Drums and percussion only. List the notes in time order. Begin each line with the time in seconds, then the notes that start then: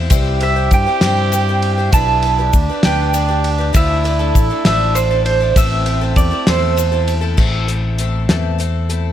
0.10 kick, ride, shaker
0.40 ride
0.71 kick, ride, shaker
1.01 snare, ride
1.32 ride, shaker
1.62 ride
1.93 kick, ride, shaker
2.22 ride
2.53 kick, ride, shaker
2.83 snare, ride
3.14 ride, shaker
3.44 ride
3.74 kick, ride, shaker
4.05 ride
4.35 kick, ride, shaker
4.65 snare, ride
4.95 ride, shaker
5.26 ride
5.56 kick, ride, shaker
5.86 ride
6.16 kick, ride, shaker
6.47 snare, ride
6.77 ride, shaker
7.08 ride, shaker
7.38 kick, crash
7.68 closed hi-hat
7.99 closed hi-hat
8.29 snare, closed hi-hat
8.60 closed hi-hat
8.90 closed hi-hat